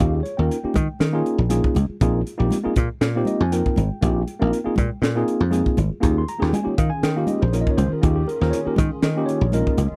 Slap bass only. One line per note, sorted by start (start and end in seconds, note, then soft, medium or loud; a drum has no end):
0.00 0.21 D#2 medium
0.39 0.49 D#2 medium
0.64 muted slap bass stroke soft
0.76 0.87 D#3 loud
1.00 1.21 D#3 medium
1.38 1.60 A#1 medium
1.76 1.87 C#2 medium
1.90 muted slap bass stroke soft
2.01 2.22 A#1 medium
2.40 2.49 A#1 medium
2.66 muted slap bass stroke soft
2.77 2.88 A#2 medium
3.01 3.22 A#2 medium
3.40 3.61 F2 medium
3.77 3.88 G#1 medium
3.91 muted slap bass stroke soft
4.03 4.23 A#1 loud
4.42 4.51 A#1 medium
4.67 muted slap bass stroke soft
4.78 4.89 A#2 medium
5.02 5.23 A#2 medium
5.40 5.61 F2 medium
5.78 5.89 G#1 medium
6.03 6.23 D#2 medium
6.42 6.51 D#2 medium
6.67 muted slap bass stroke soft
6.79 6.89 D#3 medium
7.03 7.24 D#3 medium
7.42 7.62 A#1 medium
7.78 7.89 C#2 medium
7.93 muted slap bass stroke soft
8.03 8.23 D#2 medium
8.41 8.51 D#2 medium
8.67 muted slap bass stroke soft
8.78 8.89 D#3 loud
9.03 9.23 D#3 medium
9.41 9.62 A#1 medium
9.78 9.89 C#2 medium